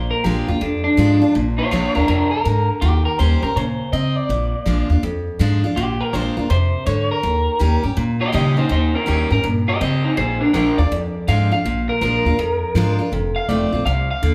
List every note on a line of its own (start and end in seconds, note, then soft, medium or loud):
0.00 0.11 A#1 loud
0.00 0.59 A#2 medium
0.00 0.10 C5 loud
0.11 0.24 A#4 medium
0.24 0.39 A#1 loud
0.24 0.47 F3 medium
0.24 0.48 G#3 medium
0.24 0.48 D4 medium
0.24 0.47 F4 medium
0.24 0.48 G4 loud
0.48 0.57 D#2 loud
0.48 0.62 D4 medium
0.48 0.61 F4 loud
0.48 0.61 F4 medium
0.61 1.32 F2 medium
0.61 0.85 F2 medium
0.61 0.83 D4 loud
0.84 1.33 D4 loud
0.97 1.21 G#2 loud
0.97 1.20 F3 medium
0.97 1.21 G#3 loud
0.97 1.21 D4 loud
0.97 1.20 F4 loud
1.22 1.35 D4 soft
1.22 1.34 F4 medium
1.35 1.59 A#1 loud
1.35 2.06 A#2 medium
1.58 1.70 F4 medium
1.58 1.71 C#5 medium
1.71 1.87 A#1 medium
1.71 1.94 F3 medium
1.71 1.95 G#3 medium
1.71 1.95 D4 medium
1.71 1.93 F4 medium
1.71 1.94 F4 medium
1.71 1.95 C#5 medium
1.95 2.04 D#2 medium
1.95 2.06 D4 medium
1.95 2.09 D4 medium
1.95 2.08 F4 medium
1.95 2.07 A#4 medium
2.07 2.32 F2 medium
2.07 2.44 C3 medium
2.07 2.30 D4 medium
2.07 2.30 A#4 medium
2.31 2.67 A#4 medium
2.45 2.69 G#2 loud
2.45 2.81 D3 medium
2.81 3.05 D#2 loud
2.81 3.18 D#3 medium
2.81 3.05 G4 loud
3.05 3.18 A#4 medium
3.19 3.34 D#2 medium
3.19 3.42 D#3 medium
3.19 3.42 G3 medium
3.19 3.42 C#4 medium
3.19 3.41 G4 medium
3.19 3.42 C5 medium
3.42 3.51 G#2 medium
3.42 3.56 C#4 medium
3.42 3.55 G4 medium
3.42 3.56 A#4 medium
3.56 3.79 A#2 medium
3.56 3.92 C#3 medium
3.56 3.92 C5 medium
3.93 4.16 C#3 medium
3.93 4.28 C4 medium
3.93 4.16 D#5 medium
4.16 4.88 D5 medium
4.29 4.52 A#1 loud
4.29 5.01 A#2 medium
4.66 4.81 A#1 medium
4.66 4.89 F3 medium
4.66 4.89 G#3 medium
4.66 4.89 D4 loud
4.66 4.89 F4 medium
4.90 4.98 D#2 loud
4.90 5.03 D4 medium
4.90 5.02 F4 medium
5.03 5.26 F2 medium
5.03 5.74 F2 medium
5.39 5.63 G#2 loud
5.39 5.62 F3 medium
5.39 5.63 G#3 medium
5.39 5.63 D4 loud
5.39 5.63 F4 loud
5.64 5.77 D4 medium
5.64 5.76 F4 medium
5.76 6.00 A#1 loud
5.76 6.48 A#2 medium
5.76 6.01 G4 loud
6.01 6.13 A#4 medium
6.13 6.28 A#1 medium
6.13 6.36 F3 medium
6.13 6.36 G#3 medium
6.13 6.37 D4 medium
6.13 6.36 F4 loud
6.13 6.37 C5 medium
6.37 6.45 D#2 medium
6.37 6.51 D4 medium
6.37 6.49 F4 medium
6.37 6.49 A#4 medium
6.50 6.73 F2 medium
6.50 6.85 C3 medium
6.50 6.86 C5 medium
6.86 7.10 G#2 medium
6.86 7.22 D3 medium
6.86 7.10 C#5 medium
7.11 7.82 A#4 loud
7.23 7.47 D#2 loud
7.23 7.58 D#3 medium
7.59 7.75 D#2 medium
7.59 7.83 D#3 medium
7.59 7.83 G3 medium
7.59 7.83 C#4 medium
7.59 7.82 G4 loud
7.83 7.92 G#2 medium
7.83 7.97 C#4 medium
7.83 7.96 G4 medium
7.97 8.68 A#2 medium
7.97 8.20 A#2 medium
8.21 8.33 G4 medium
8.21 8.33 D#5 medium
8.32 8.57 C#3 loud
8.32 8.56 D#3 medium
8.32 8.56 G3 medium
8.32 8.57 C#4 loud
8.32 8.56 G4 medium
8.32 8.56 G4 loud
8.32 8.57 D#5 loud
8.57 8.70 C#4 soft
8.57 8.70 D#4 medium
8.57 8.70 G4 medium
8.57 8.71 C5 medium
8.69 8.94 D#2 medium
8.69 9.05 D#3 medium
8.69 8.93 D#4 medium
8.69 8.94 C5 medium
8.95 9.06 C#4 medium
8.95 9.07 A#4 medium
9.06 9.23 D#2 medium
9.06 9.29 D#3 medium
9.06 9.30 G3 medium
9.06 9.30 C#4 medium
9.06 9.29 C#4 medium
9.06 9.29 G4 medium
9.06 9.31 A#4 medium
9.30 9.39 G#2 medium
9.30 9.44 C#4 medium
9.30 9.43 G4 medium
9.30 9.44 A#4 medium
9.44 9.79 G2 medium
9.44 9.67 A#2 medium
9.68 9.80 G4 medium
9.68 9.80 D#5 loud
9.81 10.04 C#3 loud
9.81 10.16 C4 medium
9.81 10.03 G4 medium
9.81 10.05 D#5 medium
10.04 10.17 D#4 medium
10.04 10.17 C5 medium
10.17 10.41 A#1 loud
10.17 10.88 A#2 medium
10.17 10.40 G#4 medium
10.17 10.41 C5 medium
10.41 10.52 D4 medium
10.41 10.53 A#4 medium
10.53 10.69 A#1 medium
10.53 10.77 F3 medium
10.53 10.77 G#3 loud
10.53 10.76 D4 loud
10.53 10.78 D4 medium
10.53 10.77 F4 loud
10.53 10.77 A#4 loud
10.78 10.86 D#2 medium
10.78 10.92 D4 soft
10.78 10.91 F4 medium
10.78 10.91 D5 loud
10.91 11.14 F2 medium
10.91 11.62 F2 medium
11.28 11.51 G#2 medium
11.28 11.51 F3 medium
11.28 11.51 G#3 loud
11.28 11.51 D4 medium
11.28 11.50 F4 loud
11.28 11.51 F5 loud
11.51 11.65 D4 soft
11.51 11.64 F4 medium
11.51 11.88 F5 medium
11.65 11.88 A#1 medium
11.65 12.36 A#2 medium
11.89 12.01 A#4 medium
12.01 12.16 A#1 medium
12.01 12.24 F3 medium
12.01 12.25 G#3 medium
12.01 12.25 D4 medium
12.01 12.25 F4 medium
12.01 13.09 A#4 loud
12.25 12.33 D#2 loud
12.25 12.39 D4 soft
12.25 12.38 F4 medium
12.38 12.61 F2 medium
12.38 13.10 F2 medium
12.75 12.98 G#2 medium
12.75 12.98 F3 medium
12.75 12.98 G#3 medium
12.75 12.99 D4 medium
12.75 12.97 F4 loud
12.99 13.12 D4 soft
12.99 13.11 F4 medium
13.12 13.35 F1 medium
13.12 13.83 F2 medium
13.36 13.49 F5 medium
13.49 13.64 F1 loud
13.49 13.72 D#3 medium
13.49 13.72 A3 medium
13.49 13.72 C4 medium
13.49 13.71 F4 medium
13.49 13.84 D5 medium
13.72 13.81 A#1 loud
13.72 13.86 C4 medium
13.72 13.85 F4 medium
13.86 14.09 C2 loud
13.86 14.22 C3 medium
13.86 14.09 F5 loud
14.11 14.35 F5 medium
14.23 14.35 D#2 loud
14.23 14.35 D3 medium